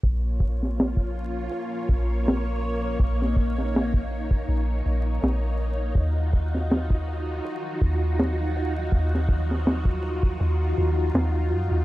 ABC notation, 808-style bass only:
X:1
M:4/4
L:1/16
Q:"Swing 16ths" 1/4=81
K:Bbm
V:1 name="808-style bass" clef=bass
B,,,8 z2 B,,,6 | B,,,8 B,,,2 B,,,2 B,,,4 | E,,8 z2 E,,6 | E,,8 E,,2 E,,2 E,,2 G,, E,, |]